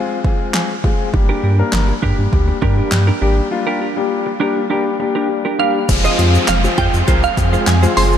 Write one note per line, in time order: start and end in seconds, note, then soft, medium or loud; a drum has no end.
0.00 0.17 G#3 medium
0.00 0.17 C4 medium
0.00 0.17 F4 medium
0.00 0.18 G#4 medium
0.24 0.69 G#3 medium
0.24 0.70 C4 medium
0.24 0.70 F4 medium
0.24 0.70 G#4 medium
0.24 0.52 F5 medium
0.24 kick medium
0.54 1.10 G#5 medium
0.54 snare loud
0.54 clap loud
0.84 1.06 G#3 medium
0.84 1.07 C4 medium
0.84 1.07 F4 medium
0.84 1.07 G#4 medium
0.84 kick loud
1.13 1.33 G1 medium
1.13 1.47 G3 medium
1.13 1.47 A#3 medium
1.13 1.47 D4 medium
1.13 1.47 G4 medium
1.13 muted clean electric guitar stroke soft
1.13 kick loud
1.29 1.42 D4 medium
1.29 1.42 G4 medium
1.29 1.43 A#4 medium
1.43 1.63 G2 medium
1.43 1.59 D4 medium
1.43 1.58 G4 medium
1.43 1.58 A#4 medium
1.59 1.92 G3 medium
1.59 1.92 A#3 medium
1.59 1.92 D4 medium
1.59 1.92 A#4 medium
1.59 muted clean electric guitar stroke soft
1.72 1.92 G1 loud
1.72 snare medium
1.72 clap loud
1.88 muted clean electric guitar stroke soft
2.02 2.13 G2 loud
2.02 2.25 G3 medium
2.02 2.25 A#3 medium
2.02 2.22 D4 medium
2.02 2.25 D4 medium
2.02 2.18 G4 medium
2.02 2.25 G4 medium
2.02 2.17 A#4 loud
2.02 kick medium
2.18 2.28 G2 loud
2.18 muted clean electric guitar stroke medium
2.32 2.52 D2 medium
2.32 2.55 G3 medium
2.32 2.55 A#3 medium
2.32 2.55 D4 medium
2.32 2.55 G4 medium
2.32 muted clean electric guitar stroke soft
2.32 kick medium
2.48 muted clean electric guitar stroke soft
2.62 2.81 G2 loud
2.62 3.07 G3 medium
2.62 3.07 A#3 medium
2.62 2.77 D4 medium
2.62 3.07 D4 medium
2.62 2.77 G4 medium
2.62 3.07 G4 medium
2.62 2.76 A#4 medium
2.62 kick medium
2.78 2.90 D4 soft
2.78 2.91 G4 medium
2.78 2.91 A#4 medium
2.91 3.11 G2 loud
2.91 snare medium
2.91 clap loud
3.07 3.20 D4 medium
3.07 3.20 G4 medium
3.07 3.21 A#4 medium
3.21 3.41 G#1 medium
3.21 3.44 G3 medium
3.21 3.44 A#3 medium
3.21 3.41 D4 medium
3.21 3.44 D4 medium
3.21 3.37 G4 medium
3.21 3.44 G4 medium
3.21 3.36 A#4 medium
3.37 muted clean electric guitar stroke soft
3.51 3.84 G3 medium
3.51 3.85 A#3 medium
3.51 3.85 D4 medium
3.51 3.85 F4 medium
3.51 muted clean electric guitar stroke soft
3.67 3.79 D4 medium
3.67 3.80 G4 medium
3.67 3.80 A#4 medium
3.81 3.96 D4 medium
3.81 3.96 G4 medium
3.81 3.95 A#4 medium
3.96 4.29 G3 medium
3.96 4.30 A#3 medium
3.96 4.30 D4 medium
3.96 4.30 G4 medium
3.96 muted clean electric guitar stroke soft
4.26 muted clean electric guitar stroke soft
4.40 4.63 G3 medium
4.40 4.63 A#3 medium
4.40 4.60 D4 medium
4.40 4.63 D4 medium
4.40 4.55 G4 medium
4.40 4.63 G4 medium
4.40 4.55 A#4 loud
4.56 muted clean electric guitar stroke soft
4.70 4.92 G3 medium
4.70 4.93 A#3 medium
4.70 4.89 D4 medium
4.70 4.93 D4 medium
4.70 4.85 G4 medium
4.70 4.93 G4 medium
4.70 4.84 A#4 medium
4.85 muted clean electric guitar stroke soft
5.00 5.45 G3 medium
5.00 5.45 A#3 medium
5.00 5.45 D4 medium
5.00 5.45 G4 medium
5.00 muted clean electric guitar stroke soft
5.15 5.28 D4 medium
5.15 5.28 G4 medium
5.15 5.29 A#4 medium
5.29 muted clean electric guitar stroke soft
5.45 5.58 D4 medium
5.45 5.58 G4 medium
5.45 5.59 A#4 medium
5.59 5.82 G3 medium
5.59 5.82 A#3 medium
5.59 5.78 D4 medium
5.59 5.82 D4 medium
5.59 5.74 G4 medium
5.59 5.82 G4 medium
5.59 5.73 A#4 loud
5.59 6.06 F5 loud
5.75 muted clean electric guitar stroke soft
5.89 6.08 F1 loud
5.89 6.11 F3 medium
5.89 8.18 F3 medium
5.89 6.11 G#3 medium
5.89 8.18 G#3 medium
5.89 6.11 C4 medium
5.89 8.18 C4 medium
5.89 6.12 F4 medium
5.89 6.12 G#4 medium
5.89 muted clean electric guitar stroke soft
5.89 kick loud
5.89 closed hi-hat medium
5.89 crash loud
5.89 downlifter medium
5.89 shaker medium
6.04 6.17 F4 medium
6.04 6.18 G#4 medium
6.04 6.18 C5 medium
6.04 6.50 D#5 medium
6.04 shaker medium
6.18 6.38 F2 loud
6.18 6.52 F3 medium
6.18 6.52 G#3 medium
6.18 6.52 C4 medium
6.18 6.34 F4 medium
6.18 6.52 F4 medium
6.18 6.52 G#4 medium
6.18 6.34 G#4 medium
6.18 6.33 C5 medium
6.18 closed hi-hat medium
6.34 muted clean electric guitar stroke soft
6.34 shaker medium
6.48 6.68 F1 loud
6.48 6.79 F5 medium
6.48 snare loud
6.48 clap loud
6.48 closed hi-hat medium
6.48 shaker medium
6.64 6.97 F3 medium
6.64 6.97 G#3 medium
6.64 6.97 C4 medium
6.64 6.97 F4 medium
6.64 6.97 G#4 medium
6.64 muted clean electric guitar stroke soft
6.64 shaker medium
6.78 6.88 F2 loud
6.78 6.97 F4 medium
6.78 6.93 G#4 medium
6.78 6.92 C5 loud
6.78 7.25 G5 loud
6.78 kick medium
6.78 closed hi-hat medium
6.94 7.03 F2 loud
6.94 muted clean electric guitar stroke medium
6.94 shaker soft
7.07 7.27 C2 medium
7.07 7.30 F3 medium
7.07 7.30 G#3 medium
7.07 7.30 C4 medium
7.07 7.27 F4 medium
7.07 7.30 F4 medium
7.07 7.23 G#4 loud
7.07 7.30 A#4 medium
7.07 7.22 C5 loud
7.07 kick loud
7.07 closed hi-hat medium
7.07 shaker medium
7.23 7.69 F5 loud
7.23 muted clean electric guitar stroke soft
7.23 shaker soft
7.37 7.57 F2 medium
7.37 7.71 F3 medium
7.37 7.71 G#3 medium
7.37 7.71 C4 medium
7.37 7.71 F4 medium
7.37 7.71 G#4 medium
7.37 muted clean electric guitar stroke soft
7.37 kick medium
7.37 closed hi-hat medium
7.37 shaker medium
7.53 7.66 F4 medium
7.53 7.66 G#4 medium
7.53 7.66 C5 medium
7.53 shaker soft
7.67 7.86 F2 loud
7.67 7.98 G#5 loud
7.67 muted clean electric guitar stroke soft
7.67 snare loud
7.67 clap loud
7.67 closed hi-hat loud
7.67 shaker medium
7.83 8.16 F3 medium
7.83 8.16 G#3 medium
7.83 8.16 C4 medium
7.83 8.16 F4 medium
7.83 7.95 F4 medium
7.83 8.16 G#4 medium
7.83 7.96 G#4 medium
7.83 7.96 C5 medium
7.83 shaker medium
7.96 8.16 F#1 loud
7.96 8.16 F4 medium
7.96 8.12 G#4 loud
7.96 8.11 C5 loud
7.96 8.18 C6 loud
7.96 open hi-hat medium
8.12 muted clean electric guitar stroke medium
8.12 shaker soft